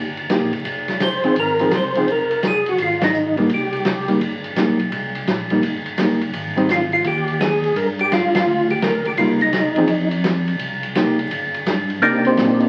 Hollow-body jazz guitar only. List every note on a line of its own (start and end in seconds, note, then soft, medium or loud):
0.30 0.51 A#3 medium
0.30 0.51 D#4 soft
0.30 0.52 G4 medium
1.24 1.35 F3 medium
1.24 1.36 C4 medium
1.24 1.36 D#4 medium
1.24 1.36 G#4 medium
1.60 1.71 F3 medium
1.60 1.71 C4 medium
1.60 1.72 D#4 medium
1.60 1.72 G#4 medium
1.97 2.07 F3 medium
1.97 2.07 C4 medium
1.97 2.08 D#4 medium
1.97 2.08 G#4 medium
3.38 3.49 G3 medium
3.38 3.49 A#3 medium
3.38 3.50 D#4 medium
4.08 4.20 G3 medium
4.08 4.20 A#3 medium
4.08 4.20 D#4 medium
4.57 4.78 G3 medium
4.57 4.78 A#3 medium
4.57 4.78 D#4 medium
5.51 5.62 G3 medium
5.51 5.63 A#3 medium
5.51 5.62 D#4 medium
6.00 6.20 G3 medium
6.00 6.20 A#3 medium
6.00 6.21 D#4 medium
6.57 6.68 G3 medium
6.57 6.68 C4 medium
6.57 6.69 D#4 medium
9.19 9.39 G3 medium
9.19 9.40 A#3 medium
9.19 9.40 D#4 medium
9.78 9.88 F3 medium
9.78 9.88 C4 medium
9.78 9.89 D#4 medium
9.78 9.89 G#4 medium
10.96 11.17 A#3 medium
10.96 11.17 D#4 medium
10.96 11.17 G4 medium
12.26 12.69 C4 medium
12.26 12.69 C5 medium